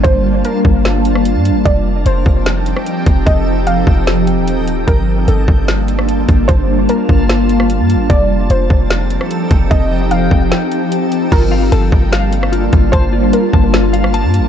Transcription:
<<
  \new Staff \with { instrumentName = "Clean electric guitar" } { \time 4/4 \key g \minor \tempo 4 = 149 r1 | r1 | r1 | r1 |
r1 | r1 | r1 | f'8 f''8 a''4 f''4 f'4 |
a''8 f'4 a''8 f'8 f''8 a''4 | }
  \new Staff \with { instrumentName = "Synth pluck" } { \time 4/4 \key g \minor c''4 bes'2 r4 | d''4 c''2 r4 | ees''4 f''4 r2 | bes'4 a'2 r4 |
c''4 bes'2 r4 | d''4 c''2 r4 | ees''4 f''4 r2 | bes'4 a'2 r4 |
c''4 bes'2 r4 | }
  \new Staff \with { instrumentName = "Synth texture" } { \time 4/4 \key g \minor <bes f' a''>1 | <ees' a' g''>1~ | <ees' a' g''>1 | <bes f' a''>1~ |
<bes f' a''>1 | <ees' a' g''>1~ | <ees' a' g''>1 | <bes f' a''>1~ |
<bes f' a''>1 | }
  \new Staff \with { instrumentName = "Ambient pad" } { \time 4/4 \key g \minor <g bes d' f' a''>1 | <f c' ees' g'>1~ | <f c' ees' g'>1 | <g bes d' f' a''>1~ |
<g bes d' f' a''>1 | <f c' ees' g'>1~ | <f c' ees' g'>1 | <g bes d' f' a''>1~ |
<g bes d' f' a''>1 | }
  \new Staff \with { instrumentName = "808-style bass" } { \clef bass \time 4/4 \key g \minor g,,4 r8 g,,4.~ g,,16 g,16. g,,16. | f,,4 f,,8 f,,4~ f,,16 r8. f,,8 | f,,4. f,,4~ f,,16 ees,,4~ ees,,16 | g,,4 g,,8 g,,2 g,,8 |
g,,4 r8 g,,4.~ g,,16 g,16. g,,16. | f,,4 f,,8 f,,4~ f,,16 r8. f,,8 | f,,4. f,,8 r2 | g,,4 g,,8 g,,2 g,,8 |
g,,4 r8 g,,4.~ g,,16 g,16. g,,16. | }
  \new DrumStaff \with { instrumentName = "Drums" } \drummode { \time 4/4 <hh bd>4 hh8 bd8 <hh sn>8 hh16 ss16 hh8 hh8 | <hh bd>4 hh8 bd8 <hh sn>8 hh16 ss16 hh8 <hh bd>8 | <hh bd>4 hh8 bd8 <hh sn>8 hh8 hh8 hh8 | <hh bd>4 hh8 bd8 <hh sn>8 hh16 ss16 hh8 <hh bd>8 |
<hh bd>4 hh8 bd8 <hh sn>8 hh16 ss16 hh8 hh8 | <hh bd>4 hh8 bd8 <hh sn>8 hh16 ss16 hh8 <hh bd>8 | <hh bd>4 hh8 bd8 <hh sn>8 hh8 hh8 hh8 | <cymc hh bd>4 hh8 bd8 <hh sn>8 hh16 ss16 hh8 <hh bd>8 |
<hh bd>4 hh8 bd8 <hh sn>8 hh16 ss16 hh8 hh8 | }
>>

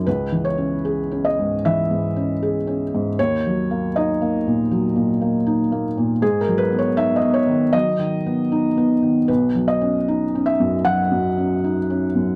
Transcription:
<<
  \new Staff \with { instrumentName = "Felt piano" } { \time 4/4 \key gis \minor \tempo 4 = 78 b'8 cis''4 dis''8 e''2 | cis''4 dis''2~ dis''8 r8 | gis'16 ais'16 b'16 cis''16 e''16 dis''16 cis''8 dis''2 | b'8 dis''4 e''8 fis''2 | }
  \new Staff \with { instrumentName = "Felt piano" } { \clef bass \time 4/4 \key gis \minor \tuplet 3/2 { cis,8 e8 cis'8 gis'8 cis'8 gis,8 e8 gis,8 cis'8 gis'8 cis'8 gis,8 } | \tuplet 3/2 { dis,8 fis8 ais8 dis'8 ais8 ais,8 fis8 ais,8 ais8 dis'8 ais8 ais,8 } | \tuplet 3/2 { gis,8 fis8 b8 dis'8 b8 dis8 fis8 dis8 b8 dis'8 b8 dis8 } | \tuplet 3/2 { b,,8 fis8 cis'8 dis'8 cis'8 fis,8 fis8 fis,8 cis'8 dis'8 cis'8 fis,8 } | }
>>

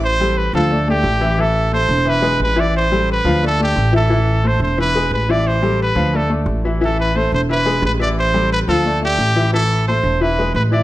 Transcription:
<<
  \new Staff \with { instrumentName = "Trumpet" } { \time 4/4 \key a \minor \tempo 4 = 177 c''4 b'8 a'4 g'4. | a'4 c''4 b'4 b'8 d''8 | c''4 b'4 a'8 g'4 a'8~ | a'4 c''8 c''8 b'4 b'8 d''8 |
c''4 b'4 a'8 r4. | a'8 b'8 c''8 c''8 b'4 b'8 d''8 | c''4 b'8 a'4 g'4. | a'4 c''4 b'4 b'8 d''8 | }
  \new Staff \with { instrumentName = "Grand piano" } { \time 4/4 \key a \minor r8 <g g' a'>4 <f f' f''>8 <a a' d''>8 <a a' d''>4 <e e' e''>8 | <e e' e''>4 <a a' c''>4 <e e' e''>8 <gis gis' b'>4 <e e' e''>8~ | <e e' e''>8 <g g' a'>4 <f f' f''>8 <a a' d''>8 <a a' d''>4 <e e' e''>8 | <e e' e''>4 <a a' c''>4 <e e' e''>8 <gis gis' b'>4 <e e' e''>8~ |
<e e' e''>8 <g g' a'>4 <f f' f''>8 <a a' d''>8 <a a' d''>4 <e e' e''>8 | <e e' e''>4 <a a' c''>4 <e e' e''>8 <gis gis' b'>4 <e e' e''>8~ | <e e' e''>8 <g g' a'>4 <f f' f''>8 <a a' d''>8 <a a' d''>4 <e e' e''>8 | <e e' e''>4 <a a' c''>4 <e e' e''>8 <gis gis' b'>4 <e e' e''>8 | }
  \new Staff \with { instrumentName = "Upright bass" } { \clef bass \time 4/4 \key a \minor a,,4. d,4. a,,4~ | a,,4. e,,4. a,,4~ | a,,4. d,4. a,,4~ | a,,4. e,,4. a,,4~ |
a,,4. d,4. a,,4~ | a,,4. e,,4. a,,4~ | a,,4. d,4. a,,4~ | a,,4. e,,4. a,,4 | }
>>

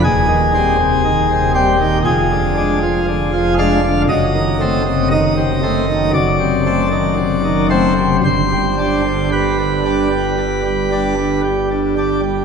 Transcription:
<<
  \new Staff \with { instrumentName = "Pipe organ" } { \time 4/4 \key g \phrygian \tempo 4 = 58 aes'4. g'8 aes'4. f''8 | dis''4 dis''4 d''4. c''8 | c''4 b'2 r4 | }
  \new Staff \with { instrumentName = "Pipe organ" } { \clef bass \time 4/4 \key g \phrygian << { ees,16 ees16 <g c'>16 c16 ees16 c16 <g c'>16 ees16 f,16 d16 <aes d'>16 f16 d16 f16 <aes d'>16 d16 | fis,16 dis16 <a c'>16 c16 dis16 c16 <a c'>16 dis16 fis,16 c16 <a c'>16 dis16 c16 dis16 <a c'>16 c16 | g,16 g16 <g d'>16 d16 g16 d16 <g d'>16 g16 d16 g16 <g d'>16 d16 g16 d16 <g d'>16 g16 | } \\ { ees,,2 f,,2 | fis,,2 fis,,2 | g,,1 | } >> }
>>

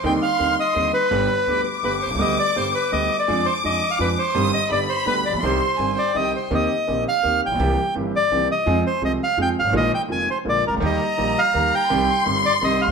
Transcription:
<<
  \new Staff \with { instrumentName = "Violin section" } { \time 3/4 \key c \minor \tempo 4 = 168 c'''2. | b''4 d'''2~ | d'''2. | d'''2. |
ees'''4 b''2 | c'''4 aes''8 g''8 g''4 | \key ees \major r2. | r2. |
r2. | r2. | bes''2. | c'''2. | }
  \new Staff \with { instrumentName = "Bandoneon" } { \time 3/4 \key c \minor g''8 f''4 ees''4 b'8~ | b'4. r8 b'8 c''8 | ees''8 d''8 c''8 b'8 ees''8. d''16~ | d''8 c''8 ees''8. f''16 b'8 c''8~ |
c''8 ees''8 d''8 c''8 b'8 d''8 | c''4. d''8 ees''8 c''8 | \key ees \major ees''4. f''4 g''8~ | g''4 r8 d''4 ees''8~ |
ees''8 c''8 ees''8 f''8 g''8 f''8 | ees''8 g''8 aes''8 c''8 d''8 bes'8 | ees''4. f''4 g''8~ | g''4 r8 d''8 ees''8 f''8 | }
  \new Staff \with { instrumentName = "Grand piano" } { \clef bass \time 3/4 \key c \minor <ees, d ees g c' ees'>8 r8 <ees, d ees g c' ees'>8 r8 <ees, d ees g c' ees'>8 r8 | <g,, g, d g b g'>8 r8 <d, d g b g'>8 r8 <g,, g, d g b g'>8 r32 b,,32 c,32 des,32 | <d, d g b g'>8 r8 <g,, g, d g b g'>8 r8 <d, d g b g'>8 r8 | <f, f aes d' aes'>8 r8 <f, f aes d' aes'>8 r8 <f, f aes d' aes'>8 r8 |
<g,, g, ees g c' g'>8 r8 <g,, g, d g b g'>8 r8 <d, d g b g'>8 r32 a,,32 bes,,32 b,,32 | <c, c ees g c' g'>8 r8 <g,, g, ees g c' g'>8 r8 <c, c ees g c' g'>8 r8 | \key ees \major <ees, ees bes c' g'>8 r8 <bes,, bes, ees bes c' g'>8 r8 <ees, ees bes c' g'>8 r32 a,,32 bes,,32 ces,32 | <c, c e bes c' g'>8 r8 <g,, g, e bes c' g'>8 r8 <c, c e bes c' g'>8 r8 |
<f, f aes c' aes'>8 r8 <c, c f aes c' aes'>8 r8 <f, f aes c' aes'>8 r32 g,,32 aes,,32 a,,32 | <bes,, bes, ees aes bes f'>8 r8 <f,, f, ees aes bes f'>8 r8 <bes,, bes, d aes bes f'>8 r32 c,32 des,32 d,32 | <ees, ees g bes g'>8 r8 <bes,, bes, ees g bes g'>8 r8 <ees, ees g bes g'>8 r8 | <c, c ees g c' g'>8 r8 <g,, g, ees g c' g'>8 r8 <c, c ees g c' g'>8 r32 d,32 r16 | }
  \new Staff \with { instrumentName = "Upright bass" } { \clef bass \time 3/4 \key c \minor ees,16. r8 r32 ees,16. r8 r32 ees,16. r8 r32 | g,,16. r8 r32 d,16. r8 r32 g,,16. r16 b,,32 c,32 des,32 | d,16. r8 r32 g,,16. r8 r32 d,16. r8 r32 | f,16. r8 r32 f,16. r8 r32 f,16. r8 r32 |
g,,16. r8 r32 g,,16. r8 r32 d,16. r16 a,,32 bes,,32 b,,32 | c,16. r8 r32 g,,16. r8 r32 c,16. r8 r32 | \key ees \major ees,16. r8 r32 bes,,16. r8 r32 ees,16. r16 a,,32 bes,,32 ces,32 | c,16. r8 r32 g,,16. r8 r32 c,16. r8 r32 |
f,16. r8 r32 c,16. r8 r32 f,16. r16 g,,32 aes,,32 a,,32 | bes,,16. r8 r32 f,,16. r8 r32 bes,,16. r16 c,32 des,32 d,32 | ees,16. r8 r32 bes,,16. r8 r32 ees,16. r8 r32 | c,16. r8 r32 g,,16. r8 r32 c,16. r16 d,32 ees,32 r32 | }
>>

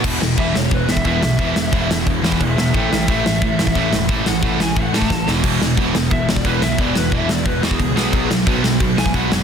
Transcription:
<<
  \new Staff \with { instrumentName = "Lead electric guitar" } { \time 4/4 \key a \lydian \tempo 4 = 178 r4 e''8 cis''8 b'8 e''8 e''4~ | e''2 r4 <gis' e''>8 <gis' e''>8 | <e'' g''>8 <e'' g''>8 e''2. | r8 fis''4 gis''8 fis''8 a''4 r8 |
r2 e''8 d''8 b'8 e''8 | d''8 b'8 e''8 d''8 b'8 gis'4.~ | gis'8 r2 gis''8 fis''8 gis''8 | }
  \new Staff \with { instrumentName = "Distorted electric guitar" } { \clef bass \time 4/4 \key a \lydian <e, b, e>8 <e, b,>8 <e, b, e>8 <e, b,>8 <e, b,>8 <e, b,>8 <e, b, e>8 <e, b,>8 | <e, b, e>8 <e, b,>8 <e, b, e>8 <e, b,>8 <e, b,>8 <e, b, e>8 <e, b,>8 <e, b,>8 | <a, e a>8 <a, e>8 <a, e a>8 <a, e>8 <a, e>8 <a, e>8 <a, e a>8 <a, e>8 | <a, e a>8 <a, e>8 <a, e a>8 <a, e>8 <a, e>8 <a, e a>8 <a, e>8 <e, b, e>8 |
<e, b, e>8 <e, b,>8 <e, b, e>8 <e, b,>8 <e, b,>8 <e, b,>8 <e, b, e>8 <e, b,>8 | <e, b, e>8 <e, b,>8 <e, b, e>8 <e, b,>8 <e, b,>8 <e, b, e>8 <e, b,>8 <b, fis b>8 | <b, fis b>8 <b, fis>8 <b, fis b>8 <b, fis>8 <b, fis>8 <b, fis>8 <b, fis b>8 <b, fis>8 | }
  \new Staff \with { instrumentName = "Overdriven electric guitar" } { \clef bass \time 4/4 \key a \lydian <e, b, e>8 <e, b,>8 <e, b, e>8 <e, b,>8 <e, b,>8 <e, b,>8 <e, b, e>8 <e, b,>8 | <e, b, e>8 <e, b,>8 <e, b, e>8 <e, b,>8 <e, b,>8 <e, b, e>8 <e, b,>8 <e, b,>8 | <a, e a>8 <a, e>8 <a, e a>8 <a, e>8 <a, e>8 <a, e>8 <a, e a>8 <a, e>8 | <a, e a>8 <a, e>8 <a, e a>8 <a, e>8 <a, e>8 <a, e a>8 <a, e>8 <e, b, e>8 |
<e, b, e>8 <e, b,>8 <e, b, e>8 <e, b,>8 <e, b,>8 <e, b,>8 <e, b, e>8 <e, b,>8 | <e, b, e>8 <e, b,>8 <e, b, e>8 <e, b,>8 <e, b,>8 <e, b, e>8 <e, b,>8 <b, fis b>8 | <b, fis b>8 <b, fis>8 <b, fis b>8 <b, fis>8 <b, fis>8 <b, fis>8 <b, fis b>8 <b, fis>8 | }
  \new Staff \with { instrumentName = "Overdriven electric guitar" } { \clef bass \time 4/4 \key a \lydian <e, b, e>2 <e, b, e>2 | <e, b, e>2 <e, b, e>2 | <a, e a>2 <a, e a>2 | <a, e a>2 <a, e a>4. <e, b, e>8~ |
<e, b, e>4. <e, b, e>2 <e, b, e>8~ | <e, b, e>4. <e, b, e>2 <b, fis b>8~ | <b, fis b>4. <b, fis b>2 <b, fis b>8 | }
  \new Staff \with { instrumentName = "Picked electric bass" } { \clef bass \time 4/4 \key a \lydian e,,8 e,,8 e,,8 e,,8 e,,8 e,,8 e,,8 b,,8 | e,,8 e,,8 e,,4 e,,8 e,8 e,,8 e,,8 | a,,8 a,,8 a,,8 a,,8 a,,8 a,,8 a,,8 e,,8 | a,,8 a,,8 a,,4 a,,8 a,8 a,,8 e,,8 |
e,,8 e,,8 e,,8 e,,8 e,,8 e,,8 e,,8 b,,8 | e,,8 e,,8 e,,4 e,,8 e,8 cis,8 b,,8 | b,,8 b,,8 b,,8 b,,8 b,,8 b,,8 b,,8 fis,,8 | }
  \new DrumStaff \with { instrumentName = "Drums" } \drummode { \time 4/4 <cymc bd>8 sn8 <cymc bd>8 sn8 <cymc bd>8 sn16 bd16 <cymc bd>8 sn8 | <cymc bd>8 sn8 <cymc bd>8 sn8 <cymc bd>8 sn16 bd16 <cymc bd>8 sn8 | <cymc bd>8 sn8 <cymc bd>8 sn8 <cymc bd>8 sn16 bd16 <cymc bd>8 sn8 | <cymc bd>8 sn8 <cymc bd>8 sn8 <cymc bd>8 sn16 bd16 <bd sn>8 sn8 |
<cymc bd>8 sn8 <cymc bd>8 sn8 <cymc bd>8 sn16 bd16 <cymc bd>8 sn8 | <cymc bd>8 sn8 <cymc bd>8 sn8 <cymc bd>8 sn16 bd16 <cymc bd>8 sn8 | <cymc bd>8 sn8 <cymc bd>8 sn8 <cymc bd>8 sn16 bd16 <cymc bd>8 sn8 | }
>>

